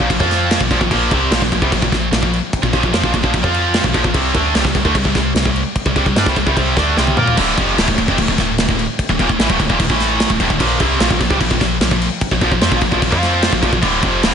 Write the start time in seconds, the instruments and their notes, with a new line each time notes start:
0.00 distorted electric guitar F3
0.10 fm bass A#1, distorted electric guitar A#2 F3, kick, crash
0.20 fm bass F2, distorted electric guitar F3 C4 F4, kick
0.31 snare, crash
0.51 snare, crash
0.60 fm bass A#1, distorted electric guitar A#2 F3, kick
0.70 fm bass A#1, distorted electric guitar A#2 F3, kick, crash
0.81 fm bass A#1, distorted electric guitar A#2 F3, kick
0.91 fm bass A#1, distorted electric guitar A#2 F3 A#3, kick, crash
1.11 fm bass C2, distorted electric guitar C3 G3 C4, kick, crash
1.31 fm bass A#1, distorted electric guitar A#2 F3, snare, crash
1.42 fm bass A#1, distorted electric guitar A#2 F3, kick, snare
1.52 fm bass A#1, distorted electric guitar A#2 F3, kick, crash
1.62 fm bass C2, distorted electric guitar C3 G3, kick
1.72 fm bass A#1, distorted electric guitar A#2 F3, kick, crash
1.82 fm bass A#1, distorted electric guitar A#2 F3, kick
1.92 fm bass A#1, distorted electric guitar A#2 F3, kick, snare, crash
2.12 fm bass A#1, distorted electric guitar A#2 F3, snare, crash
2.23 fm bass A#1, distorted electric guitar A#2 F3, kick
2.33 crash
2.53 kick, crash
2.63 fm bass A#1, distorted electric guitar A#2 F3, kick
2.73 fm bass A#1, distorted electric guitar A#2 F3, kick, crash
2.83 fm bass A#1, distorted electric guitar A#2 F3, kick
2.93 fm bass F2, distorted electric guitar F3 C4, snare, crash
3.03 fm bass A#1, distorted electric guitar A#2 F3, kick
3.14 fm bass A#1, distorted electric guitar A#2 F3, kick, crash
3.23 fm bass A#1, distorted electric guitar A#2 F3, kick
3.34 fm bass A#1, distorted electric guitar A#2 F3, kick, crash
3.43 fm bass F2, distorted electric guitar F3 C4 F4, kick
3.54 crash
3.74 snare, crash
3.84 fm bass A#1, distorted electric guitar A#2 F3, kick
3.94 fm bass A#1, distorted electric guitar A#2 F3, kick, crash
4.04 fm bass A#1, distorted electric guitar A#2 F3, kick
4.14 fm bass C2, distorted electric guitar C3 G3 C4, kick, crash
4.35 fm bass D2, distorted electric guitar D3 A3 D4, kick, crash
4.55 fm bass C2, distorted electric guitar C3 G3, snare, crash
4.64 fm bass C2, distorted electric guitar C3 G3, kick, snare
4.75 fm bass C2, distorted electric guitar C3 G3, kick, crash
4.85 fm bass D2, distorted electric guitar D3 A3, kick
4.95 fm bass C2, distorted electric guitar C3 G3, kick, crash
5.05 fm bass C2, distorted electric guitar C3 G3, kick
5.15 fm bass C2, distorted electric guitar C3 G3, kick, snare, crash
5.34 fm bass C2, distorted electric guitar C3 G3, snare, crash
5.45 fm bass C2, distorted electric guitar C3 G3, kick
5.56 crash
5.76 kick, crash
5.85 fm bass C2, distorted electric guitar C3 G3, kick
5.96 fm bass C2, distorted electric guitar C3 G3, kick, crash
6.06 fm bass C2, distorted electric guitar C3 G3, kick
6.16 fm bass G2, distorted electric guitar G3 D4, snare, crash
6.26 fm bass C2, distorted electric guitar C3 G3, kick, snare
6.36 fm bass C2, distorted electric guitar C3 G3, kick, crash
6.46 fm bass C2, distorted electric guitar C3 G3, kick
6.57 fm bass C2, distorted electric guitar C3 G3 C4, kick, crash
6.77 fm bass D2, distorted electric guitar D3 A3 D4, kick, snare, crash
6.97 fm bass C2, distorted electric guitar C3 G3 C4, snare
7.07 high tom
7.17 fm bass A#2, distorted electric guitar A#3 F4 A#4, mid tom
7.27 floor tom
7.37 fm bass D1, distorted electric guitar D2 A2 D3, kick, crash
7.57 fm bass F1, distorted electric guitar F2 C3 F3, kick, crash
7.78 fm bass D1, distorted electric guitar D2 A2, snare, crash
7.88 fm bass D1, distorted electric guitar D2 A2, kick
7.98 fm bass D1, distorted electric guitar D2 A2, kick, crash
8.08 fm bass F1, distorted electric guitar F2 C3, kick
8.18 fm bass D1, distorted electric guitar D2 A2, kick, crash
8.28 fm bass D1, distorted electric guitar D2 A2, kick
8.38 fm bass D1, distorted electric guitar D2 A2, kick, snare, crash
8.58 fm bass D1, distorted electric guitar D2 A2, snare, crash
8.68 fm bass D1, distorted electric guitar D2 A2, kick
8.79 crash
8.99 kick, crash
9.09 fm bass D1, distorted electric guitar D2 A2, kick
9.19 fm bass D#1, distorted electric guitar D#2 A#2, kick, crash
9.29 fm bass D1, distorted electric guitar D2 A2, kick
9.39 fm bass A1, distorted electric guitar A2 E3, snare, crash
9.49 fm bass D1, distorted electric guitar D2 A2, kick
9.59 fm bass D1, distorted electric guitar D2 A2, kick, crash
9.69 fm bass D#1, distorted electric guitar D#2 A#2, kick
9.79 fm bass D1, distorted electric guitar D2 A2, kick, crash
9.89 fm bass A1, distorted electric guitar A2 E3 A3, kick
10.00 snare, crash
10.20 snare, crash
10.30 fm bass D1, distorted electric guitar D2 A2, kick
10.40 fm bass D1, distorted electric guitar D2 A2, kick, crash
10.50 fm bass D1, distorted electric guitar D2 A2, kick
10.59 fm bass A#1, distorted electric guitar A#2 F3 A#3, kick, crash
10.79 fm bass C2, distorted electric guitar C3 G3 C4, kick, crash
11.00 fm bass A#1, distorted electric guitar A#2 F3, snare, crash
11.10 fm bass A#1, distorted electric guitar A#2 F3, kick
11.20 fm bass A#1, distorted electric guitar A#2 F3, kick, crash
11.30 fm bass C2, distorted electric guitar C3 G3, kick
11.40 fm bass A#1, distorted electric guitar A#2 F3, kick, crash
11.50 fm bass A#1, distorted electric guitar A#2 F3, kick
11.60 fm bass A#1, distorted electric guitar A#2 F3, kick, snare, crash
11.80 fm bass A#1, distorted electric guitar A#2 F3, snare, crash
11.91 fm bass A#1, distorted electric guitar A#2 F3, kick
12.02 crash
12.21 kick, crash
12.31 fm bass A#1, distorted electric guitar A#2 F3, kick
12.41 fm bass A#1, distorted electric guitar A#2 F3, kick, crash
12.51 fm bass A#1, distorted electric guitar A#2 F3, kick
12.61 fm bass F2, distorted electric guitar F3 C4, snare, crash
12.71 fm bass A#1, distorted electric guitar A#2 F3, kick
12.81 fm bass A#1, distorted electric guitar A#2 F3, kick, crash
12.91 fm bass A#1, distorted electric guitar A#2 F3, kick
13.02 fm bass A#1, distorted electric guitar A#2 F3, kick, crash
13.11 fm bass F2, distorted electric guitar F3 C4 F4, kick
13.23 snare, crash
13.42 snare, crash
13.52 fm bass A#1, distorted electric guitar A#2 F3, kick
13.62 fm bass A#1, distorted electric guitar A#2 F3, kick, crash
13.72 fm bass A#1, distorted electric guitar A#2 F3, kick
13.81 fm bass D1, distorted electric guitar D2 A2 D3, kick, crash
14.02 fm bass F1, distorted electric guitar F2 C3 F3, kick, crash
14.23 fm bass D1, distorted electric guitar D2 A2, snare, crash